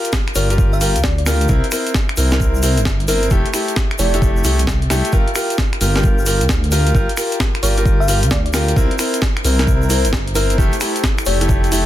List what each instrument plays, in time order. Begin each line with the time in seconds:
Already playing: ambient pad F4 A#4 G5
0.04 closed hi-hat, shaker
0.13 kick, snare, shaker
0.28 finger snap, closed hi-hat
0.35 detuned saw bass G1, grand piano F4 G4 A#4, fm electric piano D5, open hi-hat, shaker
0.50 grand piano F4 G4 A#4, closed hi-hat, shaker
0.58 kick, shaker
0.73 fm electric piano F5, shaker
0.81 grand piano F4 G4 A#4, open hi-hat, shaker
0.96 detuned saw bass D2, closed hi-hat, shaker
1.03 fm electric piano D5, kick, snare, shaker
1.18 fm electric piano D5, closed hi-hat
1.26 grand piano F4 G4 A#4, finger snap, snare, open hi-hat, shaker
1.41 closed hi-hat, shaker
1.48 detuned saw bass C2, grand piano C4 E4 A#4, ambient pad E4, kick, shaker
1.64 closed hi-hat
1.71 grand piano C4 E4 A#4, finger snap, open hi-hat, shaker
1.77 ambient pad C5
1.87 closed hi-hat, shaker
1.92 ambient pad A#5, kick, snare, shaker
2.09 finger snap, closed hi-hat
2.17 detuned saw bass C2, grand piano C4 E4 A#4, open hi-hat, shaker
2.31 grand piano C4 E4 A#4, snare, closed hi-hat, shaker
2.40 kick, shaker
2.55 shaker
2.63 grand piano C4 E4 A#4, open hi-hat, shaker
2.77 detuned saw bass G1, closed hi-hat, shaker
2.85 kick, snare, shaker
3.00 closed hi-hat
3.08 grand piano C4 E4 A#4, fm electric piano A#4, open hi-hat, shaker
3.23 closed hi-hat, shaker
3.30 detuned saw bass F1, grand piano A3 E4 G4, kick, shaker
3.38 ambient pad A4
3.46 closed hi-hat
3.54 grand piano A3 E4 G4, finger snap, open hi-hat, shaker
3.68 ambient pad G5, closed hi-hat, shaker
3.76 kick, snare, shaker
3.91 finger snap, closed hi-hat
3.99 detuned saw bass F1, grand piano A3 E4 G4, fm electric piano D5, open hi-hat, shaker
4.14 grand piano A3 E4 G4, closed hi-hat, shaker
4.22 kick, shaker
4.37 shaker
4.44 detuned saw bass C2, grand piano A3 E4 G4, open hi-hat, shaker
4.59 closed hi-hat, shaker
4.67 kick, snare, shaker
4.82 closed hi-hat
4.90 detuned saw bass C2, grand piano A3 E4 G4, finger snap, snare, open hi-hat, shaker
5.05 closed hi-hat, shaker
5.12 detuned saw bass G1, ambient pad F4, grand piano F4 G4 A#4, kick, shaker
5.28 ambient pad A#4, closed hi-hat
5.35 grand piano F4 G4 A#4, finger snap, open hi-hat, shaker
5.50 closed hi-hat, shaker
5.58 kick, snare
5.73 finger snap, closed hi-hat
5.81 detuned saw bass G1, grand piano F4 G4 A#4, open hi-hat, shaker
5.96 grand piano F4 G4 A#4, snare, closed hi-hat, shaker
6.03 kick, shaker
6.19 shaker
6.26 grand piano F4 G4 A#4, open hi-hat, shaker
6.41 detuned saw bass D2, closed hi-hat, shaker
6.49 kick, snare, shaker
6.64 closed hi-hat
6.72 grand piano F4 G4 A#4, fm electric piano A#4, open hi-hat, shaker
6.86 closed hi-hat, shaker
6.95 detuned saw bass G1, grand piano F4 G4 A#4, kick, shaker
7.09 closed hi-hat
7.17 grand piano F4 G4 A#4, finger snap, open hi-hat, shaker
7.32 closed hi-hat, shaker
7.40 kick, snare, shaker
7.55 finger snap, closed hi-hat
7.63 detuned saw bass G1, grand piano F4 G4 A#4, fm electric piano D5, open hi-hat, shaker
7.77 grand piano F4 G4 A#4, closed hi-hat, shaker
7.86 kick, shaker
8.00 fm electric piano F5, shaker
8.08 grand piano F4 G4 A#4, open hi-hat, shaker
8.23 detuned saw bass D2, closed hi-hat, shaker
8.31 fm electric piano D5, kick, snare, shaker
8.45 fm electric piano D5, closed hi-hat
8.53 grand piano F4 G4 A#4, finger snap, snare, open hi-hat, shaker
8.68 closed hi-hat, shaker
8.76 detuned saw bass C2, grand piano C4 E4 A#4, ambient pad E4, kick, shaker
8.91 closed hi-hat
8.99 grand piano C4 E4 A#4, finger snap, open hi-hat, shaker
9.06 ambient pad C5
9.14 closed hi-hat, shaker
9.22 ambient pad A#5, kick, snare, shaker
9.37 finger snap, closed hi-hat
9.44 detuned saw bass C2, grand piano C4 E4 A#4, open hi-hat, shaker
9.59 grand piano C4 E4 A#4, snare, closed hi-hat, shaker
9.67 kick, shaker
9.82 shaker
9.90 grand piano C4 E4 A#4, open hi-hat, shaker
10.05 detuned saw bass G1, closed hi-hat, shaker
10.13 kick, snare
10.28 closed hi-hat
10.35 grand piano C4 E4 A#4, fm electric piano A#4, open hi-hat, shaker
10.50 closed hi-hat, shaker
10.58 detuned saw bass F1, grand piano A3 E4 G4, kick, shaker
10.66 ambient pad A4
10.73 closed hi-hat, shaker
10.80 grand piano A3 E4 G4, finger snap, open hi-hat, shaker
10.93 ambient pad G5, closed hi-hat, shaker
11.03 kick, snare, shaker
11.18 finger snap, closed hi-hat, shaker
11.25 detuned saw bass F1, grand piano A3 E4 G4, fm electric piano D5, open hi-hat, shaker
11.41 grand piano A3 E4 G4, closed hi-hat, shaker
11.49 kick, shaker
11.64 closed hi-hat, shaker
11.72 grand piano A3 E4 G4, open hi-hat, shaker